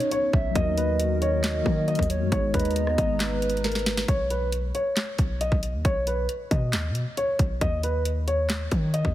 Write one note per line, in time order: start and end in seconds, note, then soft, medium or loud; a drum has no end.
0.00 0.49 B3 medium
0.00 0.52 B3 medium
0.00 0.50 C#4 medium
0.00 0.52 C#4 medium
0.00 0.51 D#4 medium
0.00 4.04 D#4 medium
0.00 0.53 F#4 medium
0.00 0.54 B4 medium
0.00 0.30 C#5 loud
0.00 closed hi-hat medium
0.11 0.29 C#5 medium
0.11 closed hi-hat medium
0.33 0.55 B1 loud
0.33 0.54 E5 medium
0.33 kick loud
0.51 1.61 F#3 medium
0.51 1.62 A#3 medium
0.55 1.62 D#2 loud
0.55 2.30 D#3 medium
0.55 1.64 D#4 medium
0.55 2.30 F#4 medium
0.55 1.65 F#4 medium
0.55 2.30 A#4 medium
0.55 0.73 D#5 loud
0.55 1.18 D#5 loud
0.55 kick loud
0.55 closed hi-hat medium
0.61 1.66 A#4 medium
0.78 0.95 B4 medium
0.78 closed hi-hat medium
1.00 closed hi-hat medium
1.22 1.84 C#5 medium
1.22 2.06 D#5 medium
1.22 closed hi-hat medium
1.44 snare loud
1.44 clap loud
1.44 closed hi-hat medium
1.63 1.98 D#3 loud
1.63 2.31 F#3 medium
1.63 2.31 A#3 medium
1.63 2.32 D#4 soft
1.63 2.32 F#4 medium
1.63 kick medium
1.68 2.33 A#4 medium
1.88 2.05 D#5 medium
1.88 closed hi-hat medium
1.95 2.22 D#2 loud
1.95 kick medium
1.95 closed hi-hat medium
2.03 closed hi-hat medium
2.10 2.31 C#5 medium
2.10 closed hi-hat medium
2.21 2.31 F#2 loud
2.27 4.02 G#3 medium
2.32 2.53 G#1 loud
2.32 4.07 G#3 medium
2.32 4.05 B3 medium
2.32 4.07 B3 loud
2.32 4.06 D#4 medium
2.32 2.49 C#5 medium
2.32 4.07 A#5 medium
2.32 kick loud
2.32 closed hi-hat medium
2.37 4.07 G#4 medium
2.54 2.96 D#2 loud
2.54 2.71 B4 medium
2.54 3.16 D#5 medium
2.54 kick loud
2.54 closed hi-hat medium
2.60 closed hi-hat medium
2.65 closed hi-hat medium
2.71 closed hi-hat soft
2.76 closed hi-hat medium
2.87 cross-stick medium
2.98 4.04 G#1 loud
2.98 3.60 D#5 medium
2.98 kick medium
2.98 closed hi-hat medium
3.20 4.04 B4 loud
3.20 snare loud
3.20 clap loud
3.20 closed hi-hat medium
3.42 closed hi-hat medium
3.50 closed hi-hat medium
3.57 closed hi-hat medium
3.64 4.06 A#4 medium
3.64 snare medium
3.64 closed hi-hat medium
3.72 snare medium
3.72 closed hi-hat soft
3.79 closed hi-hat soft
3.86 snare loud
3.97 snare loud
4.08 4.72 B1 loud
4.08 4.26 C#5 loud
4.08 kick loud
4.08 closed hi-hat medium
4.30 4.48 B4 medium
4.30 closed hi-hat medium
4.52 closed hi-hat medium
4.75 5.37 C#5 medium
4.75 closed hi-hat medium
4.97 snare loud
4.97 clap loud
4.97 closed hi-hat medium
5.18 5.50 B1 loud
5.18 kick medium
5.18 closed hi-hat medium
5.41 5.58 D#5 medium
5.41 closed hi-hat medium
5.52 5.75 B1 loud
5.52 kick medium
5.63 closed hi-hat medium
5.74 5.84 D#2 loud
5.85 6.27 B1 loud
5.85 6.02 C#5 loud
5.85 kick loud
5.85 closed hi-hat medium
6.07 6.25 B4 medium
6.07 closed hi-hat medium
6.29 closed hi-hat medium
6.51 6.75 B2 loud
6.51 7.13 D#5 medium
6.51 kick medium
6.51 closed hi-hat medium
6.73 6.91 D#2 loud
6.73 snare loud
6.73 clap loud
6.73 closed hi-hat medium
6.90 7.05 B2 medium
6.95 closed hi-hat medium
7.17 7.35 C#5 medium
7.17 closed hi-hat medium
7.39 7.60 B1 loud
7.39 kick loud
7.39 closed hi-hat medium
7.61 8.68 D#2 loud
7.61 7.79 D#5 loud
7.61 kick loud
7.61 closed hi-hat medium
7.83 8.01 B4 medium
7.83 closed hi-hat medium
8.05 closed hi-hat medium
8.28 8.90 C#5 medium
8.28 closed hi-hat medium
8.50 snare loud
8.50 clap loud
8.50 closed hi-hat medium
8.71 9.03 D#3 loud
8.71 kick medium
8.71 closed hi-hat medium
8.94 9.11 D#5 medium
8.94 closed hi-hat medium
9.05 9.14 D#2 loud
9.05 kick medium